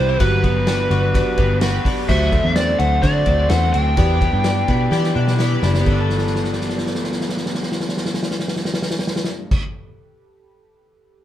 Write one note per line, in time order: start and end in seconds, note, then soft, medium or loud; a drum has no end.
0.00 0.16 C2 medium
0.00 0.20 E3 medium
0.00 0.19 G3 medium
0.00 0.43 B3 medium
0.00 0.20 C4 medium
0.00 0.22 C4 loud
0.00 0.21 E4 medium
0.00 0.22 E4 medium
0.00 0.25 G4 medium
0.00 0.20 B4 medium
0.00 0.21 B4 loud
0.00 0.17 C5 medium
0.09 0.25 E4 medium
0.19 0.87 G1 loud
0.19 2.08 F#3 medium
0.19 0.44 G3 medium
0.19 0.42 B3 medium
0.19 0.43 D4 medium
0.19 0.39 F#4 loud
0.19 0.44 F#4 medium
0.19 0.39 G4 medium
0.19 1.58 B4 medium
0.19 0.40 B4 loud
0.19 0.44 B4 medium
0.19 kick loud
0.19 ride medium
0.43 0.55 B3 medium
0.43 1.37 B3 medium
0.43 0.56 D4 medium
0.43 0.63 F#4 medium
0.43 0.55 F#4 medium
0.43 0.63 G4 medium
0.43 0.63 B4 medium
0.43 0.54 B4 medium
0.43 kick medium
0.43 ride medium
0.55 1.38 D4 soft
0.55 1.38 F#4 medium
0.55 1.38 B4 medium
0.66 1.14 D4 medium
0.66 0.86 F#4 loud
0.66 0.87 G4 medium
0.66 0.87 B4 loud
0.66 snare loud
0.66 ride medium
0.90 1.21 G1 medium
0.90 1.10 F#4 medium
0.90 1.61 F#4 medium
0.90 1.10 G4 medium
0.90 1.11 B4 loud
0.90 ride soft
1.14 1.85 D4 medium
1.14 1.33 F#4 medium
1.14 1.34 G4 medium
1.14 1.34 B4 medium
1.14 kick medium
1.14 snare soft
1.14 ride medium
1.37 1.78 G1 medium
1.37 1.60 B3 medium
1.37 2.14 B3 medium
1.37 1.61 D4 medium
1.37 1.57 F#4 medium
1.37 1.62 F#4 medium
1.37 1.58 G4 medium
1.37 1.62 B4 medium
1.37 1.58 B4 medium
1.37 kick loud
1.37 ride medium
1.61 1.84 B3 medium
1.61 1.84 D4 medium
1.61 1.81 F#4 loud
1.61 2.14 F#4 medium
1.61 1.85 F#4 medium
1.61 1.81 G4 loud
1.61 1.81 B4 loud
1.61 1.86 B4 medium
1.61 snare loud
1.61 ride medium
1.85 2.08 B3 medium
1.85 2.55 D4 medium
1.85 2.07 D4 medium
1.85 2.04 F#4 medium
1.85 2.08 F#4 medium
1.85 2.05 G4 medium
1.85 2.05 B4 loud
1.85 2.09 B4 medium
1.85 kick medium
1.85 open hi-hat medium
1.85 ride medium
2.08 2.39 D2 loud
2.08 2.44 D3 medium
2.08 2.44 F#3 medium
2.08 3.98 F#3 medium
2.08 2.44 A3 medium
2.08 2.28 D4 loud
2.08 2.44 D4 medium
2.08 2.43 F#4 medium
2.08 2.28 F#4 medium
2.08 2.42 C5 medium
2.08 2.29 C5 loud
2.08 2.53 E5 medium
2.08 kick loud
2.08 crash loud
2.32 2.78 A3 medium
2.32 2.52 D4 medium
2.32 2.52 F#4 medium
2.32 2.53 C5 medium
2.32 kick loud
2.32 ride medium
2.43 2.74 E2 medium
2.43 2.78 A3 soft
2.43 2.78 D4 soft
2.43 2.79 F#4 medium
2.43 2.79 C5 medium
2.55 3.26 C4 medium
2.55 2.75 D4 medium
2.55 2.75 F#4 medium
2.55 2.76 C5 medium
2.55 2.78 D5 medium
2.55 snare loud
2.55 ride medium
2.79 3.00 D2 medium
2.79 3.38 A3 medium
2.79 3.49 A3 medium
2.79 2.98 D4 medium
2.79 3.39 D4 medium
2.79 2.99 F#4 medium
2.79 3.37 F#4 medium
2.79 2.99 C5 medium
2.79 3.37 C5 medium
2.79 3.01 F#5 medium
2.79 ride medium
3.02 3.23 D3 loud
3.02 3.22 D4 medium
3.02 4.02 F#4 medium
3.02 3.23 F#4 medium
3.02 3.23 C5 loud
3.02 3.51 D5 medium
3.02 kick medium
3.02 snare soft
3.02 ride medium
3.26 3.47 D2 medium
3.26 3.73 C4 medium
3.26 3.46 D4 medium
3.26 3.46 F#4 medium
3.26 3.47 C5 medium
3.26 kick medium
3.26 ride medium
3.38 3.48 A3 soft
3.38 3.49 D4 medium
3.38 3.50 F#4 medium
3.38 3.50 C5 medium
3.49 3.71 E2 loud
3.49 3.71 A3 medium
3.49 3.97 A3 medium
3.49 3.69 D4 loud
3.49 3.72 D4 medium
3.49 3.69 F#4 medium
3.49 3.73 F#4 medium
3.49 3.70 C5 loud
3.49 3.74 C5 medium
3.49 3.73 F#5 loud
3.49 snare loud
3.49 ride medium
3.72 3.94 D2 loud
3.72 3.97 A3 medium
3.72 4.02 C4 medium
3.72 3.93 D4 medium
3.72 3.97 D4 medium
3.72 3.93 F#4 medium
3.72 3.98 F#4 medium
3.72 3.94 C5 medium
3.72 3.98 C5 medium
3.72 5.35 G5 loud
3.72 ride medium
3.97 4.28 E2 loud
3.97 4.33 E3 medium
3.97 4.33 B3 medium
3.97 4.21 B3 medium
3.97 4.33 D4 medium
3.97 4.16 E4 loud
3.97 4.17 G4 medium
3.97 4.32 G4 medium
3.97 4.31 B4 medium
3.97 4.17 D5 loud
3.97 kick loud
3.97 ride medium
4.21 4.68 B3 medium
4.21 4.40 E4 medium
4.21 4.41 G4 medium
4.21 4.41 D5 medium
4.21 kick medium
4.21 ride medium
4.32 4.63 G2 loud
4.32 4.67 D4 medium
4.32 4.68 G4 medium
4.32 4.68 B4 medium
4.44 5.15 D4 medium
4.44 4.63 E4 medium
4.44 4.64 G4 medium
4.44 4.64 D5 medium
4.44 snare loud
4.44 ride medium
4.67 4.89 B2 medium
4.67 5.38 B3 medium
4.67 5.39 B3 medium
4.67 5.29 D4 medium
4.67 4.87 E4 medium
4.67 4.88 G4 medium
4.67 5.28 G4 medium
4.67 5.26 B4 medium
4.67 4.88 D5 medium
4.67 kick medium
4.67 ride soft
4.91 5.12 E3 loud
4.91 5.11 E4 loud
4.91 5.11 G4 medium
4.91 6.00 G4 medium
4.91 5.12 D5 loud
4.91 snare medium
5.04 snare medium
5.15 5.56 B2 loud
5.15 5.62 D4 medium
5.15 5.34 E4 medium
5.15 5.35 G4 medium
5.15 5.35 D5 loud
5.27 5.38 D4 soft
5.27 5.38 G4 medium
5.27 5.39 B4 medium
5.27 snare medium
5.38 5.60 B3 medium
5.38 5.80 B3 medium
5.38 5.61 D4 medium
5.38 5.58 E4 loud
5.38 5.58 G4 loud
5.38 5.62 G4 medium
5.38 5.62 B4 medium
5.38 5.59 D5 loud
5.38 snare medium
5.61 5.83 F#1 medium
5.61 5.85 B3 medium
5.61 5.86 D4 medium
5.61 5.91 D4 medium
5.61 5.82 E4 medium
5.61 5.82 G4 medium
5.61 5.87 G4 medium
5.61 5.87 B4 medium
5.61 5.83 D5 medium
5.61 snare loud
5.74 snare medium
5.81 9.58 G3 medium
5.81 9.58 B3 medium
5.81 9.55 G4 medium
5.85 9.57 G1 medium
5.85 9.60 A3 medium
5.85 9.62 D4 medium
5.85 9.57 A4 medium
5.85 kick loud
5.85 crash medium
5.90 9.63 D4 medium
5.90 9.64 G4 medium
5.90 9.58 B4 medium
5.95 9.65 B4 medium
6.01 9.68 A4 medium
6.10 snare soft
6.18 snare soft
6.27 snare soft
6.36 snare soft
6.44 snare soft
6.53 snare soft
6.61 snare medium
6.70 snare medium
6.78 snare medium
6.87 snare medium
6.95 snare medium
7.04 snare medium
7.12 snare medium
7.21 snare medium
7.29 snare medium
7.37 snare medium
7.46 snare medium
7.55 snare medium
7.63 snare medium
7.72 snare medium
7.81 snare medium
7.89 snare medium
7.97 snare medium
8.06 snare medium
8.14 snare medium
8.23 snare medium
8.31 snare medium
8.40 snare medium
8.48 snare medium
8.56 snare medium
8.65 snare medium
8.74 snare medium
8.82 snare medium
8.91 snare medium
8.99 snare medium
9.07 snare medium
9.16 snare medium
9.25 snare medium
9.51 kick loud
9.51 crash loud